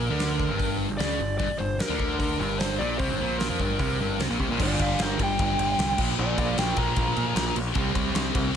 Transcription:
0.00 0.75 A#4 medium
0.10 0.48 D2 medium
0.10 0.50 D3 medium
0.19 snare loud
0.19 open hi-hat soft
0.40 kick medium
0.49 0.88 G1 medium
0.49 0.88 G2 medium
0.59 kick medium
0.59 open hi-hat soft
0.89 0.99 G1 medium
0.89 1.00 G2 medium
0.97 1.18 C#2 medium
0.97 1.19 C#3 loud
0.97 1.36 D5 medium
0.97 snare medium
0.97 open hi-hat medium
1.19 1.38 G1 medium
1.19 1.36 G2 medium
1.38 1.49 G1 medium
1.38 1.49 G2 loud
1.38 1.58 D5 loud
1.38 kick loud
1.38 open hi-hat soft
1.50 muted distorted electric guitar stroke medium
1.50 muted picked electric bass stroke soft
1.50 muted overdriven electric guitar stroke medium
1.58 1.79 G1 medium
1.58 1.76 G2 medium
1.58 1.80 C5 medium
1.79 2.17 A#4 medium
1.79 snare loud
1.79 open hi-hat soft
1.89 2.36 D2 medium
1.89 2.39 D3 loud
2.00 kick medium
2.19 2.61 A#4 medium
2.19 kick medium
2.19 open hi-hat medium
2.39 2.77 G1 loud
2.39 2.79 G2 medium
2.58 2.79 C5 medium
2.58 snare loud
2.58 open hi-hat medium
2.79 2.99 A#1 medium
2.79 2.99 A#2 medium
2.79 2.98 D5 medium
2.98 3.09 C2 medium
2.98 3.09 C3 loud
2.98 3.17 C5 loud
2.98 kick medium
2.98 open hi-hat medium
3.10 3.20 G1 medium
3.10 3.19 G2 medium
3.18 3.48 A#1 medium
3.18 3.49 A#2 loud
3.18 3.39 C5 medium
3.39 4.19 A#4 medium
3.39 snare loud
3.39 open hi-hat medium
3.50 3.59 F2 medium
3.50 3.59 F3 loud
3.59 3.78 G1 medium
3.59 3.79 G2 medium
3.59 kick medium
3.79 3.98 C2 medium
3.79 3.99 C3 loud
3.79 kick medium
3.79 open hi-hat soft
3.99 4.18 G1 medium
3.99 4.19 G2 medium
4.19 4.29 C2 medium
4.19 4.28 C3 loud
4.19 snare loud
4.19 open hi-hat soft
4.29 4.39 A#1 medium
4.29 4.38 A#2 medium
4.39 4.49 C2 medium
4.39 4.48 C3 medium
4.39 kick medium
4.48 4.59 A#1 medium
4.48 4.58 A#2 medium
4.57 4.75 G1 loud
4.57 5.16 G2 medium
4.57 5.18 D3 loud
4.57 5.16 G3 medium
4.57 kick loud
4.57 crash loud
4.62 4.81 F4 loud
4.62 4.80 D5 medium
4.79 4.95 G1 medium
4.79 4.99 D5 medium
4.79 5.02 F5 medium
4.79 kick medium
4.79 ride medium
4.99 5.20 A#4 medium
4.99 5.20 G5 medium
4.99 snare loud
4.99 ride medium
5.18 5.34 G1 medium
5.18 5.98 G2 medium
5.18 5.96 D3 medium
5.18 5.96 G3 medium
5.18 kick medium
5.18 ride medium
5.23 5.98 G5 medium
5.39 5.54 G1 loud
5.39 5.97 G2 medium
5.39 5.97 D3 medium
5.39 5.99 G3 medium
5.39 kick loud
5.39 ride loud
5.58 5.74 G1 loud
5.58 ride medium
5.79 5.94 C2 medium
5.79 snare loud
5.79 ride medium
5.97 6.13 A#1 medium
5.97 6.55 A#2 medium
5.97 6.57 F3 medium
5.97 6.57 A#3 medium
5.97 kick loud
5.97 crash loud
6.19 6.33 A#1 loud
6.19 6.38 F4 loud
6.19 6.38 D5 medium
6.37 6.53 A#1 loud
6.37 6.58 D5 medium
6.37 6.57 F5 medium
6.37 kick medium
6.37 ride medium
6.57 6.73 A#1 medium
6.57 7.55 A#2 medium
6.57 7.56 F3 loud
6.57 7.56 A#3 loud
6.57 6.76 A#4 medium
6.57 6.77 G5 medium
6.57 snare loud
6.57 ride loud
6.77 6.92 A#1 medium
6.77 7.56 A#2 medium
6.77 7.56 F3 medium
6.77 7.55 A#3 medium
6.77 7.54 A#5 loud
6.77 kick medium
6.77 ride medium
6.96 7.12 A#1 loud
6.96 kick loud
6.96 ride loud
7.17 7.32 A#2 medium
7.17 ride medium
7.35 7.51 A#1 loud
7.35 snare loud
7.35 ride loud
7.56 7.71 A#1 medium
7.56 ride medium
7.75 7.91 C2 loud
7.75 8.33 C3 loud
7.75 8.34 G3 loud
7.75 8.33 C4 medium
7.75 kick loud
7.75 ride medium
7.95 8.10 C2 loud
7.95 kick medium
7.95 ride medium
8.14 8.30 C2 medium
8.14 snare loud
8.14 ride medium
8.34 8.50 C2 loud
8.34 8.56 C3 medium
8.34 8.56 G3 medium
8.34 8.56 C4 medium
8.34 kick medium
8.34 ride medium

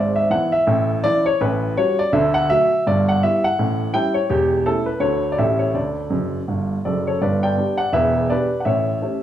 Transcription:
0.00 0.25 G#1 medium
0.00 0.25 G#2 medium
0.00 0.16 D5 medium
0.16 0.30 E5 medium
0.30 0.50 E3 soft
0.30 0.51 B3 soft
0.30 0.51 E4 soft
0.30 0.52 F#5 medium
0.52 1.03 E5 medium
0.67 0.97 A1 medium
0.67 0.98 A2 medium
1.04 1.24 E3 soft
1.04 1.24 C#4 soft
1.04 1.24 E4 soft
1.04 1.25 D5 loud
1.26 1.40 C#5 medium
1.41 1.71 A1 medium
1.41 1.71 A2 medium
1.41 1.76 B4 medium
1.77 1.97 G3 soft
1.77 1.97 C#4 soft
1.77 1.98 F#4 medium
1.77 1.98 C#5 medium
1.99 2.13 D5 medium
2.13 2.43 D2 medium
2.13 2.43 D3 medium
2.13 2.34 E5 medium
2.34 2.48 F#5 medium
2.49 2.69 F#3 soft
2.49 2.69 A3 soft
2.49 2.69 F#4 soft
2.49 2.85 E5 loud
2.87 3.17 G1 medium
2.87 3.16 G2 medium
2.87 3.07 D5 medium
3.09 3.22 F#5 medium
3.23 3.42 G3 soft
3.23 3.43 B3 soft
3.23 3.43 E4 soft
3.23 3.43 E5 medium
3.44 3.94 F#5 medium
3.59 3.89 A1 medium
3.59 3.89 A2 medium
3.93 4.13 G3 soft
3.93 4.14 C#4 soft
3.93 4.14 E4 medium
3.93 4.15 G5 medium
4.14 4.29 C#5 medium
4.30 4.60 E1 medium
4.30 4.61 E2 medium
4.30 4.66 G4 medium
4.66 4.86 A3 soft
4.66 4.86 C#4 soft
4.66 4.87 E4 soft
4.66 4.87 A4 medium
4.86 5.01 B4 medium
4.99 5.32 D2 medium
4.99 5.32 D3 medium
4.99 5.20 A3 soft
4.99 5.21 D4 soft
4.99 5.21 F#4 soft
4.99 5.30 C#5 medium
5.32 5.39 D5 medium
5.38 5.69 A1 medium
5.38 5.69 A2 medium
5.38 5.58 A3 soft
5.38 5.58 C#4 soft
5.38 5.59 G4 soft
5.38 5.60 E5 medium
5.59 5.74 C#5 medium
5.74 6.06 D2 medium
5.74 6.05 D3 medium
5.74 6.84 D5 medium
6.10 6.38 F#1 soft
6.10 6.38 F#2 medium
6.48 6.75 G1 medium
6.48 6.75 G2 soft
6.85 7.12 F#1 soft
6.85 7.12 F#2 soft
6.85 7.05 A4 soft
6.85 7.06 D5 medium
7.07 7.21 A4 soft
7.07 7.21 C#5 medium
7.21 7.52 G1 medium
7.21 7.52 G2 medium
7.21 7.42 B4 medium
7.21 7.42 D5 medium
7.43 7.77 D5 medium
7.43 7.79 G5 medium
7.57 7.77 B3 soft
7.57 7.77 D4 soft
7.57 7.78 G4 soft
7.78 7.92 D5 medium
7.78 7.93 F#5 medium
7.93 8.24 E1 medium
7.93 8.24 E2 medium
7.93 8.27 B4 medium
7.93 8.30 E5 medium
8.30 8.50 B3 soft
8.30 8.50 D4 soft
8.30 8.50 G4 soft
8.30 8.59 B4 medium
8.30 8.60 D5 medium
8.60 8.66 F#5 medium
8.65 8.96 A1 medium
8.65 8.97 A2 medium
8.65 9.23 C#5 medium
8.65 9.23 E5 medium
9.02 9.22 A3 soft
9.02 9.22 C#4 soft
9.02 9.22 G4 soft

